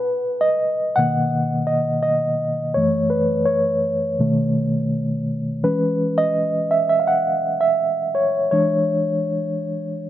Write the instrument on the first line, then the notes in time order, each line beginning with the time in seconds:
reed electric piano
Already playing: B4
0.41 D#5
0.96 B2 D#3 A#3 F#5
1.67 D#5
2.03 D#5
2.74 F#2 E3 A3 C#5
3.10 B4
3.46 C#5
4.19 B2 D#3 A3
5.63 E3 G#3 C#4 B4
6.18 D#5
6.71 E5
6.89 E5
7.00 F5
7.08 F#5
7.61 E5
8.15 C#5
8.51 E3 G#3 D4 C#5